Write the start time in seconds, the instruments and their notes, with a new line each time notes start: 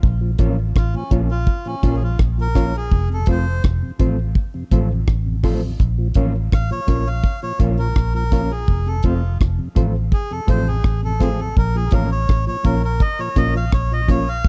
0.03 fingered electric bass A#1, kick
0.21 tonewheel organ A#2 F3
0.38 fingered electric bass A1, clean electric guitar F3 A#3 C#4 F4, tonewheel organ A#3 C#4 F4, reed electric piano C#4 F4 A#4 C#5, kick, closed hi-hat
0.76 fingered electric bass A1, melodica F4, kick, cross-stick
0.94 tonewheel organ A#2 F3, melodica C#4
1.11 fingered electric bass A#1, clean electric guitar F3 A#3 C#4 F4, tonewheel organ A#3 C#4 F4, reed electric piano C#4 F4 A#4 C#5, kick, closed hi-hat
1.31 melodica F4
1.47 kick
1.65 tonewheel organ A#2 F3, melodica C#4
1.83 fingered electric bass A#1, clean electric guitar F3 A#3 C#4 F4, tonewheel organ A#3 C#4 F4, reed electric piano C#4 F4 A#4 C#5, kick, closed hi-hat
1.96 melodica G#4
2.02 tonewheel organ A#2 F3, melodica F4
2.19 fingered electric bass A#1, kick, cross-stick
2.38 tonewheel organ A#2 F3, melodica A#4
2.55 clean electric guitar F3 A#3 C#4 F4, tonewheel organ A#3 C#4 F4, reed electric piano C#4 F4 A#4 C#5, kick, cross-stick, closed hi-hat
2.77 melodica G#4
2.92 fingered electric bass F1, kick
3.10 tonewheel organ F2 C3, melodica A4
3.26 fingered electric bass F1, clean electric guitar F3 A3 C4 F4, tonewheel organ A3 C4 F4, reed electric piano C4 F4 A4 C5, kick, closed hi-hat
3.31 melodica C5
3.64 fingered electric bass F1, kick, cross-stick
3.82 tonewheel organ F2 C3
3.99 fingered electric bass A1, clean electric guitar F3 A3 C4 F4, tonewheel organ A3 C4 F4, reed electric piano C4 F4 A4 C5, kick, closed hi-hat
4.35 kick
4.54 tonewheel organ F2 C3
4.71 fingered electric bass A1, clean electric guitar F3 A3 C4 F4, tonewheel organ A3 C4 F4, reed electric piano C4 F4 A4 C5, kick, closed hi-hat
4.90 tonewheel organ F2 C3
5.08 fingered electric bass A1, kick, cross-stick
5.26 tonewheel organ F2 C3
5.43 clean electric guitar F3 A3 C4 F4, tonewheel organ A3 C4 F4, reed electric piano C4 F4 A4 C5, kick, open hi-hat
5.62 tonewheel organ F2 C3
5.80 fingered electric bass A#1, kick, hi-hat pedal
5.98 tonewheel organ A#2 F3
6.14 fingered electric bass A1, clean electric guitar F3 A#3 C#4 F4, tonewheel organ A#3 C#4 F4, reed electric piano C#4 F4 A#4 C#5, kick, closed hi-hat
6.52 fingered electric bass A1, melodica F5, kick, cross-stick
6.71 tonewheel organ A#2 F3, melodica C#5
6.87 fingered electric bass A#1, clean electric guitar F3 A#3 C#4 F4, tonewheel organ A#3 C#4 F4, reed electric piano C#4 F4 A#4 C#5, kick, closed hi-hat
7.07 melodica F5
7.24 kick
7.43 tonewheel organ A#2 F3, melodica C#5
7.59 fingered electric bass A#1, clean electric guitar F3 A#3 C#4 F4, tonewheel organ A#3 C#4 F4, reed electric piano C#4 F4 A#4 C#5, kick, closed hi-hat
7.79 tonewheel organ A#2 F3, melodica A#4
7.96 fingered electric bass A#1, kick, cross-stick
8.14 tonewheel organ A#2 F3, melodica A#4
8.31 clean electric guitar F3 A#3 C#4 F4, tonewheel organ A#3 C#4 F4, reed electric piano C#4 F4 A#4 C#5, kick, closed hi-hat
8.51 melodica G#4
8.68 fingered electric bass F1, kick
8.86 tonewheel organ F2 C3, melodica A4
9.03 fingered electric bass F1, clean electric guitar F3 A3 C4 F4, tonewheel organ A3 C4 F4, reed electric piano C4 F4 A4 C5, melodica F4, kick, closed hi-hat
9.41 fingered electric bass F1, kick, cross-stick
9.59 tonewheel organ F2 C3
9.75 fingered electric bass A1, clean electric guitar F3 A3 C4 F4, tonewheel organ A3 C4 F4, reed electric piano C4 F4 A4 C5, kick, closed hi-hat
10.12 melodica G#4, kick
10.31 tonewheel organ F2 C3, melodica A4
10.47 fingered electric bass A1, clean electric guitar F3 A3 C4 F4, tonewheel organ A3 C4 F4, reed electric piano C4 F4 A4 C5, melodica C5, kick, closed hi-hat
10.67 tonewheel organ F2 C3, melodica G#4
10.84 fingered electric bass A1, kick, cross-stick
11.03 tonewheel organ F2 C3, melodica A4
11.20 clean electric guitar F3 A3 C4 F4, tonewheel organ A3 C4 F4, reed electric piano C4 F4 A4 C5, melodica G#4, kick, cross-stick, closed hi-hat
11.39 tonewheel organ F2 C3, melodica A4
11.57 fingered electric bass A#1, melodica A#4, kick
11.75 tonewheel organ A#2 F3, melodica G#4
11.91 fingered electric bass A1, clean electric guitar F3 A#3 C#4 F4, tonewheel organ A#3 C#4 F4, reed electric piano C#4 F4 A#4 C#5, melodica A#4, kick, closed hi-hat
12.11 melodica C#5
12.29 fingered electric bass A1, kick, cross-stick
12.47 tonewheel organ A#2 F3, melodica C#5
12.64 fingered electric bass A#1, clean electric guitar F3 A#3 C#4 F4, tonewheel organ A#3 C#4 F4, reed electric piano C#4 F4 A#4 C#5, melodica A#4, kick, closed hi-hat
12.84 melodica A#4
13.00 melodica D#5, kick
13.19 tonewheel organ A#2 F3, melodica C#5
13.36 fingered electric bass A#1, clean electric guitar F3 A#3 C#4 F4, tonewheel organ A#3 C#4 F4, reed electric piano C#4 F4 A#4 C#5, melodica D#5, kick, closed hi-hat
13.55 tonewheel organ A#2 F3, melodica F5
13.72 fingered electric bass A#1, melodica C#5, kick, cross-stick
13.92 tonewheel organ A#2 F3, melodica D#5
14.08 clean electric guitar F3 A#3 C#4 F4, tonewheel organ A#3 C#4 F4, reed electric piano C#4 F4 A#4 C#5, melodica C#5, kick, closed hi-hat
14.28 melodica F5
14.45 fingered electric bass F1, kick